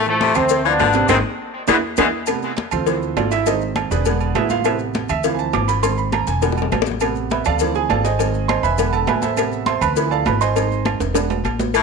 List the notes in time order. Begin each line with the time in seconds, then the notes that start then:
Already playing: A1
0.05 E3 F3 A3 E4 E5, high conga, maracas
0.20 C3, cowbell, high conga, low timbale, low agogo, maracas
0.35 D2 A3 C4 C5 C6, high conga, low conga, low agogo, claves, maracas
0.49 cowbell, high conga, maracas
0.65 E3 F3 B3 D4 F4 F5, high conga, maracas
0.79 G#1 D3, cowbell, high conga, low timbale, low agogo, claves, maracas
0.93 C3 C4 C5, cowbell, high conga, low agogo, maracas
1.08 G#1 D#3 G#3 C4 D#4 G#4, cowbell, high conga, high timbale, claves, maracas
1.68 E2 E3 G#3 B3 D4 E4 G#4, cowbell, high conga, high timbale, claves, maracas
1.97 E2 E3 G#3 B3 D4 E4 G#4, cowbell, high conga, high timbale, claves, maracas
2.26 C3 A3 B3, cowbell, high conga, low agogo, claves, maracas
2.43 high conga, maracas
2.57 cowbell, high conga, low timbale, low agogo, maracas
2.71 D2 C4 F4 A4 C5, high conga, low conga, low agogo, claves, maracas
2.86 E3 F3 C4, cowbell, high conga, maracas
3.02 high conga, maracas
3.17 G#1 D4 F4 A4 D5, cowbell, high conga, low timbale, low agogo, claves, maracas
3.31 E4 E5, cowbell, high conga, low agogo, maracas
3.46 D#3 G#3 C4 D#4 G#4 C5 D#5, cowbell, high conga, low agogo, maracas
3.61 high conga, maracas
3.76 cowbell, high conga, low timbale, low agogo, claves, maracas
3.91 E1 D4 G#4 B4 D5, cowbell, high conga, maracas
4.05 D3 G#3 B3, cowbell, high conga, low agogo, maracas
4.20 high conga, low agogo, maracas
4.35 A1 E4 G#4 B4 E5, cowbell, high conga, low timbale, low agogo, claves, maracas
4.49 F4 F5, cowbell, high conga, maracas
4.64 C3 A3 B3 E4 B4 C5 E5, cowbell, high conga, low agogo, claves, maracas
4.79 high conga, maracas
4.94 cowbell, high conga, low timbale, low agogo, maracas
5.09 D2 E5, high conga, low conga, low agogo, claves, maracas
5.24 E3 F3 C4 F5, cowbell, high conga, low conga, maracas
5.35 G#5, maracas
5.39 A5, high conga
5.53 G#1 D6, cowbell, high conga, low timbale, low agogo, claves, maracas
5.68 B5, cowbell, high conga, low agogo, maracas
5.82 D#3 G#3 C4 C6, cowbell, high conga, low agogo, maracas
5.98 B5, high conga, maracas
6.12 A#5, cowbell, high conga, low timbale, low agogo, claves, maracas
6.27 E1 G#5, cowbell, high conga, maracas
6.41 D3 G#3 B3, cowbell, high bongo, high conga, low agogo, maracas
6.52 high bongo
6.57 high conga, low agogo, maracas
6.62 low bongo
6.72 A1, cowbell, low bongo, high conga, low timbale, low agogo, claves, maracas
6.82 low bongo
6.86 cowbell, high conga, maracas
6.91 low bongo
7.00 C3 A3 B3, cowbell, high conga, low agogo, claves, maracas
7.15 high conga, maracas
7.30 B4 E5 B5, cowbell, high conga, low timbale, low agogo, maracas
7.45 D2 A4 D5 F5 A5, high conga, low conga, low agogo, claves, maracas
7.59 E3 F3 C4, cowbell, high conga, low conga, maracas
7.75 G#4 G#5, high conga, maracas
7.89 G#1 A4 D5 F5 A5, cowbell, high conga, low timbale, low agogo, claves, maracas
8.04 G#4 C5 D#5 G#5, cowbell, high conga, low agogo, maracas
8.19 D#3 G#3 C4, cowbell, high conga, low agogo, maracas
8.34 high conga, maracas
8.48 C5 D#5 G#5 C6, cowbell, high conga, low timbale, low agogo, claves, maracas
8.63 E1 B4 E5 G#5 B5, cowbell, high conga, maracas
8.77 D3 G#3 B3, cowbell, high conga, low agogo, maracas
8.93 A4 A5, high conga, low agogo, maracas
9.07 A1 B4 E5 G#5 B5, cowbell, high conga, low timbale, low agogo, claves, maracas
9.22 A4 C5 E5 A5, cowbell, high conga, maracas
9.36 C3 A3 B3, cowbell, high conga, low agogo, claves, maracas
9.52 high conga, maracas
9.66 C5 E5 A5 C6, cowbell, high conga, low timbale, low agogo, maracas
9.81 D2 B4 B5, high conga, low conga, low agogo, claves, maracas
9.96 F3 C4 E4, cowbell, high conga, maracas
10.07 G#5
10.11 A4 D5 F5 A5, high conga, maracas
10.25 G#1 B4 B5, cowbell, high conga, low timbale, low agogo, claves, maracas
10.41 C5 D#5 G#5 C6, cowbell, high conga, low agogo, maracas
10.55 G#3 C4 D#4, cowbell, high conga, low agogo, maracas
10.70 high conga, maracas
10.85 cowbell, high conga, low timbale, low agogo, claves, maracas
11.00 E1, cowbell, high conga, high timbale, maracas
11.14 G#3 B3 D4, cowbell, high conga, high timbale, low agogo, maracas
11.30 high conga, low timbale, low agogo, maracas
11.44 A1, cowbell, high conga, low agogo, claves, maracas
11.59 cowbell, high conga, low timbale, maracas
11.74 E3 A3, cowbell, high conga, low agogo, claves, maracas